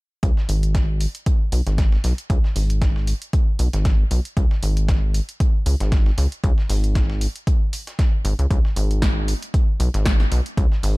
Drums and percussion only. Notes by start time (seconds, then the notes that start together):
0.23 kick, closed hi-hat
0.37 snare
0.49 closed hi-hat, open hi-hat
0.63 closed hi-hat
0.75 kick, snare, closed hi-hat
1.01 closed hi-hat, open hi-hat
1.15 closed hi-hat
1.26 kick, closed hi-hat
1.52 closed hi-hat, open hi-hat
1.67 snare, closed hi-hat
1.78 kick, snare, closed hi-hat
1.92 snare
2.04 snare, closed hi-hat, open hi-hat
2.18 closed hi-hat
2.30 kick, closed hi-hat
2.44 snare
2.56 open hi-hat
2.70 closed hi-hat
2.82 kick, snare, closed hi-hat
2.96 snare
3.07 closed hi-hat, open hi-hat
3.22 closed hi-hat
3.33 kick, closed hi-hat
3.59 closed hi-hat, open hi-hat
3.73 snare, closed hi-hat
3.85 kick, snare, closed hi-hat
4.11 closed hi-hat, open hi-hat
4.25 closed hi-hat
4.37 kick, closed hi-hat
4.51 snare
4.63 closed hi-hat, open hi-hat
4.77 closed hi-hat
4.88 kick, snare, closed hi-hat
5.14 closed hi-hat, open hi-hat
5.29 closed hi-hat
5.40 kick, closed hi-hat
5.66 closed hi-hat, open hi-hat
5.80 snare, closed hi-hat
5.92 kick, snare, closed hi-hat
6.06 snare
6.18 snare, closed hi-hat, open hi-hat
6.32 closed hi-hat
6.44 kick, closed hi-hat
6.58 snare
6.69 open hi-hat
6.84 closed hi-hat
6.95 kick, snare, closed hi-hat
7.10 snare
7.21 closed hi-hat, open hi-hat
7.36 closed hi-hat
7.47 kick, closed hi-hat
7.73 closed hi-hat, open hi-hat
7.87 snare, closed hi-hat
7.99 kick, snare, closed hi-hat
8.25 closed hi-hat, open hi-hat
8.39 closed hi-hat
8.51 kick, closed hi-hat
8.65 snare
8.76 closed hi-hat, open hi-hat
8.91 closed hi-hat
9.02 kick, snare, closed hi-hat
9.28 closed hi-hat, open hi-hat
9.42 closed hi-hat
9.54 kick, closed hi-hat
9.80 closed hi-hat, open hi-hat
9.94 snare, closed hi-hat
10.06 kick, snare, closed hi-hat
10.20 snare
10.32 snare, closed hi-hat, open hi-hat
10.46 closed hi-hat
10.57 kick, closed hi-hat
10.72 snare
10.83 open hi-hat